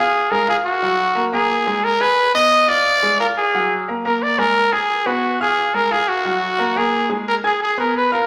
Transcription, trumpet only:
0.00 0.33 G#4 loud
0.31 0.48 A#4 loud
0.50 0.57 G#4 medium
0.66 1.29 F#4 loud
1.34 1.86 G#4 loud
1.84 2.03 A#4 loud
2.01 2.35 B4 loud
2.35 2.70 D#5 loud
2.69 3.19 D5 loud
3.20 3.27 A#4 loud
3.37 3.75 G#4 medium
4.06 4.24 A#4 loud
4.23 4.41 D5 loud
4.39 4.74 A#4 loud
4.73 5.08 G#4 medium
5.07 5.40 F#4 loud
5.42 5.76 G#4 loud
5.75 5.94 A#4 loud
5.92 6.10 G#4 loud
6.08 6.79 F#4 medium
6.78 7.10 G#4 medium
7.28 7.36 A#4 medium
7.46 7.61 G#4 medium
7.62 7.77 G#4 medium
7.80 7.95 A#4 medium
7.97 8.12 B4 medium
8.13 8.27 A#4 medium

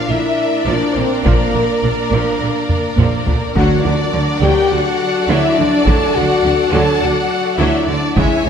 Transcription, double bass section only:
0.08 0.16 A#1 soft
0.67 0.75 A#1 medium
0.96 1.04 A#1 medium
1.25 1.33 A#1 medium
1.54 1.62 A#1 soft
1.83 1.91 A#1 medium
2.12 2.20 A#1 medium
2.41 2.49 A#1 medium
2.98 3.06 A#1 medium
3.27 3.35 A#1 medium
3.56 3.64 D2 medium
3.84 3.92 D2 medium
4.13 4.21 D2 medium
4.41 4.49 D2 medium
4.71 4.79 D2 medium
5.28 5.36 D2 medium
5.58 5.66 D2 medium
5.85 5.93 D2 medium
6.15 6.23 D2 medium
6.43 6.51 D2 medium
6.72 6.80 D2 medium
7.01 7.09 D2 medium
7.59 7.67 D2 medium
7.88 7.96 D2 medium
8.17 8.25 C#2 medium
8.46 8.49 C#2 medium

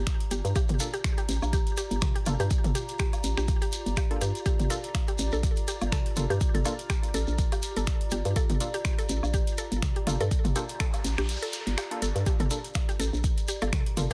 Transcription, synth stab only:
0.80 0.88 A#3 medium
0.80 0.88 D4 medium
0.80 0.88 F4 medium
0.80 0.88 A4 medium
2.26 2.34 A#3 medium
2.26 2.34 D4 medium
2.26 2.34 F4 medium
2.26 2.34 A4 loud
4.11 4.20 A#3 loud
4.11 4.20 D4 medium
4.11 4.20 F4 medium
4.11 4.20 A4 loud
4.70 4.78 A#3 medium
4.70 4.78 D4 medium
4.70 4.78 F4 medium
4.70 4.78 A4 medium
6.17 6.24 A#3 medium
6.17 6.24 D4 medium
6.17 6.24 F4 medium
6.17 6.24 A4 loud
6.65 6.73 A#3 loud
6.65 6.73 D4 medium
6.65 6.73 F4 loud
6.65 6.73 A4 loud
8.61 8.68 A#3 medium
8.61 8.68 D4 medium
8.61 8.68 F4 medium
8.61 8.68 A4 medium
10.07 10.14 A#3 medium
10.07 10.15 D4 medium
10.07 10.15 F4 medium
10.07 10.14 A4 loud
10.56 10.63 A#3 loud
10.56 10.63 D4 medium
10.56 10.63 F4 loud
10.56 10.63 A4 loud
11.91 12.01 A#3 loud
11.91 12.01 D4 medium
11.91 12.01 F4 medium
11.91 12.01 A4 loud
12.51 12.58 A#3 medium
12.51 12.58 D4 medium
12.51 12.58 F4 medium
12.51 12.58 A4 medium
13.97 14.05 A#3 medium
13.97 14.05 D4 medium
13.97 14.05 F4 medium
13.97 14.05 A4 loud

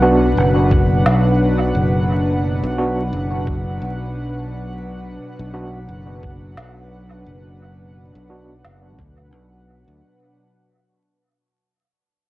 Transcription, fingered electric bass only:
0.00 0.34 B1 medium
0.37 1.03 F#1 medium
1.06 1.72 B1 medium
1.75 2.60 F#1 medium
2.63 3.10 B1 medium
3.13 3.79 F#1 medium
3.82 5.17 B1 medium
5.39 5.86 B1 medium
5.89 6.55 F#1 medium
6.58 7.24 B1 medium
7.26 8.11 F#1 medium
8.15 8.62 B1 medium
8.65 8.99 F#1 medium
8.99 9.34 D2 medium
9.34 9.84 B1 medium
9.88 10.01 D2 medium

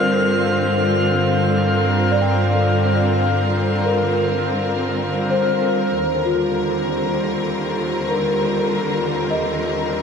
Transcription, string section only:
0.00 5.98 D3 medium
0.00 5.99 G3 medium
0.00 5.98 C4 medium
0.00 5.97 F4 medium
1.61 10.02 A#4 medium
5.96 10.02 D#2 medium
6.05 10.02 D3 medium
6.14 10.02 G3 medium
6.43 10.02 C4 medium
7.07 10.02 F4 medium

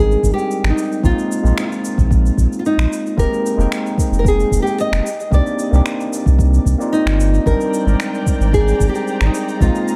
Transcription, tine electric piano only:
0.00 1.05 G3 medium
0.00 0.99 G#3 medium
0.00 1.03 C4 medium
0.00 1.05 D4 medium
0.00 1.04 D#4 medium
0.00 1.05 A#4 medium
0.00 1.00 D5 medium
1.03 1.40 G#3 medium
1.03 1.41 A#3 medium
1.03 1.41 C4 medium
1.03 1.41 D#4 medium
1.03 1.41 F4 medium
1.43 3.14 G#3 medium
1.43 3.14 A#3 medium
1.43 3.15 C4 medium
1.43 3.15 D#4 medium
1.47 3.16 F4 medium
3.17 3.55 G#3 medium
3.17 3.55 A#3 medium
3.17 3.55 C4 medium
3.17 3.55 D#4 medium
3.17 3.56 G4 medium
3.57 5.03 G#3 medium
3.57 5.04 A#3 medium
3.57 5.04 C4 medium
3.57 5.04 D#4 medium
3.61 5.05 G5 medium
5.31 5.69 A#3 medium
5.31 5.69 C4 medium
5.31 5.69 D4 medium
5.31 5.70 D#4 medium
5.31 5.70 G4 medium
5.71 6.76 A#3 medium
5.71 6.77 C4 medium
5.71 6.77 D4 medium
5.71 6.78 D#4 medium
5.75 6.78 G4 medium
6.78 7.42 A#3 medium
6.78 7.43 C4 medium
6.78 7.44 D#4 medium
6.78 7.43 D5 medium
6.82 7.44 F4 medium
7.46 7.83 G3 medium
7.46 7.84 C4 medium
7.46 7.84 D4 medium
7.46 7.84 D#4 medium
7.46 7.84 A#4 medium
7.85 9.56 G#3 medium
7.85 9.57 C4 medium
7.85 9.58 D#4 medium
7.85 9.58 A#4 medium
7.85 9.57 D5 medium
9.60 9.96 G#3 medium
9.60 9.96 A#3 medium
9.60 9.96 C4 medium
9.60 9.96 D#4 medium
9.60 9.96 F4 loud

